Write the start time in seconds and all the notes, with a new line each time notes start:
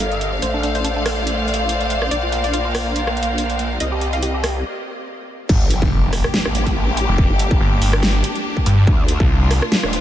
Already playing: G1 G3 G4 A4 A#4 F5
0.00 closed hi-hat
0.12 closed hi-hat
0.21 closed hi-hat
0.42 A1 A3 C5 D5, closed hi-hat
0.54 D4
0.63 D4, closed hi-hat
0.75 C5, closed hi-hat
0.84 D4, closed hi-hat
0.96 D4
1.06 cross-stick, open hi-hat
1.27 closed hi-hat
1.48 closed hi-hat
1.54 closed hi-hat
1.69 closed hi-hat
1.81 closed hi-hat
1.90 closed hi-hat
2.02 cross-stick
2.11 A#1 A#3 A#4 D5, closed hi-hat
2.23 F4
2.32 F4, closed hi-hat
2.44 D5, closed hi-hat
2.54 F4, closed hi-hat
2.65 F4
2.75 cross-stick, open hi-hat
2.96 closed hi-hat
3.07 cross-stick
3.17 closed hi-hat
3.23 closed hi-hat
3.38 closed hi-hat
3.50 closed hi-hat
3.59 closed hi-hat
3.80 C2 C4 G4 D#5, closed hi-hat
3.92 G4
4.01 G4, closed hi-hat
4.13 F5, closed hi-hat
4.23 G4, closed hi-hat
4.34 G4
4.44 cross-stick, open hi-hat
5.49 G1 A#3 D4 G4, kick, crash, impact
5.70 closed hi-hat
5.82 F1, kick
6.13 cross-stick, open hi-hat
6.24 cross-stick
6.34 snare
6.45 A1, cross-stick
6.55 closed hi-hat
6.67 kick, closed hi-hat
6.97 closed hi-hat
7.09 F1
7.18 kick
7.30 G1
7.39 closed hi-hat
7.51 kick
7.61 G1
7.82 G1, open hi-hat
7.93 cross-stick
8.03 snare
8.24 closed hi-hat
8.36 closed hi-hat
8.57 kick
8.66 G2, closed hi-hat
8.87 D2 A3 F4, kick
9.08 closed hi-hat
9.20 C2, kick
9.51 cross-stick, open hi-hat
9.62 cross-stick
9.72 snare
9.83 D#1, cross-stick
9.93 closed hi-hat